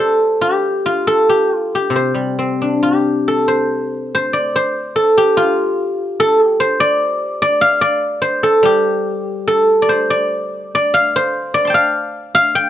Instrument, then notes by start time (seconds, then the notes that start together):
guzheng
Already playing: G4 A4 C5 D5
0.41 G4
0.86 F4
1.07 A4
1.29 G4
1.55 F4
1.75 G4
1.90 C3
1.96 C5
2.14 G3
2.39 C4
2.62 D4
2.83 G4
3.28 A4
3.48 C5
4.15 C5
4.33 D5
4.56 C5
4.96 A4
5.18 G4
5.37 F4
6.20 A4
6.45 G4
6.60 C5
6.80 D5
7.42 D5
7.61 F5
7.81 D5
8.22 C5
8.43 A4
8.63 G3 G4
9.48 A4
9.82 D5
9.89 C5
10.10 D5
10.75 D5
10.94 F5
11.16 C5
11.54 D5
11.65 A5 C6
11.70 G5
11.74 F5
12.35 F5
12.55 G5